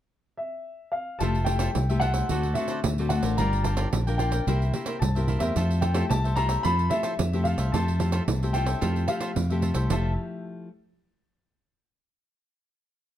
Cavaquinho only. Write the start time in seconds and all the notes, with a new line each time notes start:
1.21 F4 A4 C5 E5
1.47 F4 A4 C5 E5
1.59 F4 A4 C5 E5
1.89 A4 C5 E5
2.01 F4 A4 C5 E5
2.14 A4 C5 E5
2.30 F#4 A4 C5 D5
2.56 F#4 A4 C5 D5
2.69 F#4 A4 C5 D5
2.99 A4 C5 D5
3.11 F#4 A4 C5 D5
3.23 A4 C5 D5
3.39 F4 A#4 D5 G5
3.65 F4 A#4 D5 G5
3.77 F4 A#4 D5 G5
4.07 A#4 D5 G5
4.19 F4 A#4 D5 G5
4.31 A#4 D5 G5
4.47 E4 A#4 C5 E5
4.74 E4 A#4 C5 E5
4.86 E4 A#4 C5 E5
5.15 A#4 C5 E5
5.28 E4 A#4 C5 E5
5.40 A#4 C5 E5
5.56 F4 A4 C5 E5
5.81 F4 A4 C5 E5
5.95 F4 A4 C5 E5
6.24 A4 C5 E5
6.36 F4 A4 C5 E5
6.49 A4 C5 E5
6.65 F4 A4 C5 E5
6.91 F4 A4 C5 E5
7.03 F4 A4 C5 E5
7.33 A4 C5 E5
7.46 F4 A4 C5 E5
7.58 A4 C5 E5
7.74 F4 A4 C5 E5
8.00 F4 A4 C5 E5
8.13 F4 A4 C5 E5
8.43 A4 C5 E5
8.54 F4 A4 C5 E5
8.66 A4 C5 E5
8.81 F4 A4 C5 E5
9.07 F4 A4 C5 E5
9.20 F4 A4 C5 E5
9.50 A4 C5 E5
9.62 F4 A4 C5 E5
9.74 A4 C5 E5
9.90 F4 A4 C5 E5